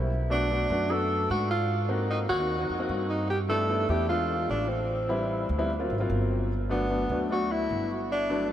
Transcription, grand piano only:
0.30 0.44 A3 medium
0.30 0.44 B3 medium
0.30 0.44 D4 medium
0.30 0.44 F#4 medium
0.51 0.64 A3 medium
0.51 0.64 B3 medium
0.51 0.64 D4 medium
0.51 0.64 F#4 medium
0.70 0.84 A3 medium
0.70 0.84 B3 medium
0.70 0.84 D4 medium
0.70 0.84 F#4 medium
0.90 1.46 A3 medium
0.90 1.46 B3 medium
0.90 1.46 D4 medium
0.90 1.46 F#4 medium
1.88 2.24 A#3 medium
1.88 2.24 C4 medium
1.88 2.24 D#4 medium
1.88 2.24 F#4 medium
2.39 2.53 A#3 medium
2.39 2.53 C4 medium
2.39 2.54 D#4 medium
2.39 2.54 F#4 medium
2.59 2.73 A#3 medium
2.59 2.73 C4 medium
2.59 2.73 D#4 medium
2.59 2.74 F#4 medium
2.79 3.28 A#3 medium
2.79 3.29 C4 medium
2.79 3.29 D#4 medium
2.79 3.29 F#4 medium
3.49 3.63 A3 medium
3.49 3.63 B3 medium
3.49 3.63 D4 medium
3.49 3.64 E4 medium
3.69 3.83 A3 medium
3.69 3.83 B3 medium
3.69 3.84 D4 medium
3.69 3.84 E4 medium
3.89 4.03 A3 medium
3.89 4.03 B3 medium
3.89 4.04 D4 medium
3.89 4.04 E4 medium
4.09 4.65 G#3 medium
4.09 4.66 B3 medium
4.09 4.66 D4 medium
4.09 4.66 F4 medium
5.09 5.44 G3 medium
5.09 5.45 C4 medium
5.09 5.45 E4 medium
5.09 5.44 B4 medium
5.59 5.69 G3 medium
5.59 5.69 B3 medium
5.59 5.69 C4 medium
5.59 5.69 E4 medium
5.79 5.94 F#3 medium
5.79 5.93 A#3 medium
5.79 5.94 C4 medium
5.79 5.94 F4 medium
5.99 6.49 F#3 medium
5.99 6.49 A#3 medium
5.99 6.49 C4 medium
5.99 6.49 F4 medium
6.69 6.83 F#3 medium
6.69 6.84 A3 medium
6.69 6.84 B3 medium
6.69 6.84 D4 medium
6.90 7.04 F#3 medium
6.90 7.04 A3 medium
6.90 7.04 B3 medium
6.90 7.04 D4 medium
7.10 7.24 F#3 medium
7.10 7.24 A3 medium
7.10 7.24 B3 medium
7.10 7.24 D4 medium
7.30 7.86 F#3 medium
7.30 7.86 A3 medium
7.30 7.86 B3 medium
7.30 7.86 D4 medium
8.30 8.52 F#3 medium
8.30 8.52 A3 medium
8.30 8.52 B3 medium
8.30 8.52 D4 medium

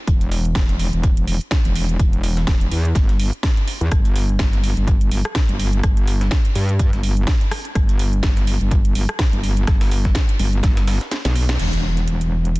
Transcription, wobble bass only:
0.08 0.54 E1 medium
0.55 0.91 E1 loud
0.93 1.26 E1 medium
1.28 1.39 E1 loud
1.65 1.98 E1 medium
2.00 2.46 E1 medium
2.47 2.70 E1 loud
2.71 2.94 E2 loud
2.96 3.31 G1 loud
3.81 3.90 E2 medium
3.92 4.38 G1 medium
4.39 4.75 G1 medium
4.77 5.10 G1 loud
5.12 5.23 G1 medium
5.49 5.82 G1 medium
5.83 6.30 G1 loud
6.55 6.91 G2 loud
6.93 7.26 G1 loud
7.75 8.22 G1 loud
8.23 8.59 G1 loud
8.61 8.94 G1 loud
8.95 9.07 G1 loud
9.33 9.66 G1 loud
9.67 10.14 G1 loud
10.39 10.62 G1 medium
10.63 10.99 G1 loud
11.25 11.58 B1 medium
11.59 12.60 E1 medium

